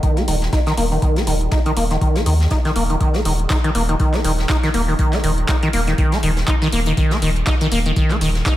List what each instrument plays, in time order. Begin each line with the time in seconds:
0.03 acid bass D#3, kick, closed hi-hat
0.17 acid bass A#3, snare, closed hi-hat
0.28 sub bass D#1, acid bass D#3, closed hi-hat, open hi-hat
0.42 snare, closed hi-hat
0.53 acid bass D#4, kick, snare, closed hi-hat
0.66 acid bass D#3, snare, closed hi-hat
0.77 sub bass D#1, acid bass A#3, closed hi-hat, open hi-hat
0.92 acid bass D#3, closed hi-hat
1.02 acid bass D#3, kick, closed hi-hat
1.16 acid bass A#3, snare, closed hi-hat
1.27 sub bass D#1, acid bass D#3, closed hi-hat, open hi-hat
1.41 closed hi-hat
1.51 acid bass D#4, kick, snare, closed hi-hat
1.66 acid bass D#3, closed hi-hat
1.76 sub bass D#1, acid bass A#3, closed hi-hat, open hi-hat
1.90 acid bass D#3, snare, closed hi-hat
2.01 acid bass D#3, kick, closed hi-hat
2.15 acid bass A#3, snare, closed hi-hat
2.26 sub bass D#2, acid bass D#3, closed hi-hat, open hi-hat
2.40 snare, closed hi-hat
2.50 acid bass D#4, kick, snare, closed hi-hat
2.65 acid bass D#3, snare, closed hi-hat
2.76 sub bass D#1, acid bass A#3, closed hi-hat, open hi-hat
2.90 acid bass D#3, closed hi-hat
3.01 acid bass D#3, kick, closed hi-hat
3.14 acid bass A#3, snare, closed hi-hat
3.25 sub bass D#1, acid bass D#3, closed hi-hat, open hi-hat
3.39 closed hi-hat
3.50 acid bass D#4, kick, snare, clap, closed hi-hat
3.64 acid bass D#3, closed hi-hat
3.75 sub bass D#1, acid bass A#3, closed hi-hat, open hi-hat
3.89 acid bass D#3, closed hi-hat
3.99 acid bass D#3, kick, closed hi-hat
4.14 acid bass A#3, snare, clap, closed hi-hat
4.25 sub bass D#1, acid bass D#3, closed hi-hat, open hi-hat
4.39 snare, closed hi-hat
4.49 acid bass D#4, kick, snare, clap, closed hi-hat
4.63 acid bass D#3, snare, closed hi-hat
4.74 sub bass D#1, acid bass A#3, closed hi-hat, open hi-hat
4.88 acid bass D#3, closed hi-hat
4.99 acid bass D#3, kick, closed hi-hat
5.13 acid bass A#3, snare, clap, closed hi-hat
5.23 sub bass D#1, acid bass D#3, closed hi-hat, open hi-hat
5.38 closed hi-hat
5.48 acid bass D#4, kick, snare, clap, closed hi-hat
5.63 acid bass D#3, closed hi-hat
5.73 sub bass D#1, acid bass A#3, closed hi-hat, open hi-hat
5.87 acid bass D#3, snare, closed hi-hat
5.98 acid bass D#3, kick, closed hi-hat
6.12 acid bass A#3, snare, closed hi-hat
6.23 sub bass D#1, acid bass D#3, closed hi-hat, open hi-hat
6.37 snare, closed hi-hat
6.47 acid bass D#4, kick, clap, closed hi-hat
6.62 acid bass D#3, snare, closed hi-hat
6.72 sub bass D#1, acid bass A#3, closed hi-hat, open hi-hat
6.86 acid bass D#3, closed hi-hat
6.97 acid bass D#3, kick, closed hi-hat
7.11 acid bass A#3, snare, closed hi-hat
7.22 sub bass D#1, acid bass D#3, closed hi-hat, open hi-hat
7.36 closed hi-hat
7.46 acid bass D#4, kick, snare, clap, closed hi-hat
7.61 acid bass D#3, closed hi-hat
7.72 sub bass D#1, acid bass A#3, closed hi-hat, open hi-hat
7.86 acid bass D#3, closed hi-hat
7.96 acid bass D#3, kick, closed hi-hat
8.10 acid bass A#3, snare, clap, closed hi-hat
8.21 sub bass D#1, acid bass D#3, closed hi-hat, open hi-hat
8.35 snare, closed hi-hat
8.46 acid bass D#4, kick, snare, clap, closed hi-hat